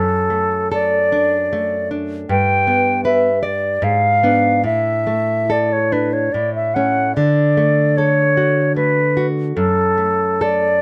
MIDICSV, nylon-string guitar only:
0, 0, Header, 1, 2, 480
1, 0, Start_track
1, 0, Key_signature, 2, "major"
1, 0, Tempo, 818554
1, 892, Tempo, 769231
1, 1372, Time_signature, 3, 2, 24, 8
1, 2332, Tempo, 832178
1, 4252, Tempo, 797872
1, 5692, Tempo, 845070
1, 6412, End_track
2, 0, Start_track
2, 0, Title_t, "Nylon-string guitar"
2, 0, Program_c, 0, 24
2, 0, Note_on_c, 0, 42, 43
2, 176, Note_on_c, 0, 57, 35
2, 420, Note_on_c, 0, 69, 37
2, 568, Note_off_c, 0, 57, 0
2, 659, Note_on_c, 0, 62, 36
2, 797, Note_off_c, 0, 69, 0
2, 896, Note_on_c, 0, 57, 37
2, 1037, Note_off_c, 0, 62, 0
2, 1134, Note_on_c, 0, 62, 38
2, 1280, Note_off_c, 0, 57, 0
2, 1346, Note_off_c, 0, 42, 0
2, 1372, Note_off_c, 0, 62, 0
2, 1374, Note_on_c, 0, 43, 49
2, 1610, Note_on_c, 0, 59, 40
2, 1846, Note_on_c, 0, 71, 39
2, 1991, Note_off_c, 0, 59, 0
2, 2079, Note_off_c, 0, 71, 0
2, 2081, Note_on_c, 0, 74, 41
2, 2309, Note_off_c, 0, 43, 0
2, 2326, Note_on_c, 0, 44, 45
2, 2330, Note_off_c, 0, 74, 0
2, 2566, Note_on_c, 0, 59, 35
2, 2570, Note_on_c, 0, 62, 35
2, 2782, Note_off_c, 0, 59, 0
2, 2785, Note_off_c, 0, 62, 0
2, 2788, Note_off_c, 0, 44, 0
2, 2798, Note_on_c, 0, 45, 46
2, 3047, Note_on_c, 0, 57, 34
2, 3294, Note_on_c, 0, 69, 31
2, 3443, Note_off_c, 0, 57, 0
2, 3540, Note_on_c, 0, 62, 33
2, 3683, Note_off_c, 0, 69, 0
2, 3752, Note_off_c, 0, 45, 0
2, 3778, Note_off_c, 0, 62, 0
2, 3782, Note_on_c, 0, 45, 40
2, 4022, Note_on_c, 0, 57, 30
2, 4025, Note_on_c, 0, 61, 34
2, 4234, Note_off_c, 0, 57, 0
2, 4235, Note_off_c, 0, 61, 0
2, 4241, Note_off_c, 0, 45, 0
2, 4259, Note_on_c, 0, 50, 41
2, 4502, Note_on_c, 0, 57, 37
2, 4748, Note_on_c, 0, 69, 35
2, 4884, Note_off_c, 0, 57, 0
2, 4983, Note_on_c, 0, 66, 35
2, 5123, Note_off_c, 0, 69, 0
2, 5218, Note_on_c, 0, 57, 38
2, 5361, Note_off_c, 0, 66, 0
2, 5462, Note_on_c, 0, 66, 35
2, 5599, Note_off_c, 0, 57, 0
2, 5672, Note_off_c, 0, 50, 0
2, 5697, Note_off_c, 0, 66, 0
2, 5700, Note_on_c, 0, 42, 48
2, 5933, Note_on_c, 0, 57, 40
2, 6181, Note_on_c, 0, 69, 37
2, 6321, Note_off_c, 0, 57, 0
2, 6412, Note_off_c, 0, 42, 0
2, 6412, Note_off_c, 0, 69, 0
2, 6412, End_track
0, 0, End_of_file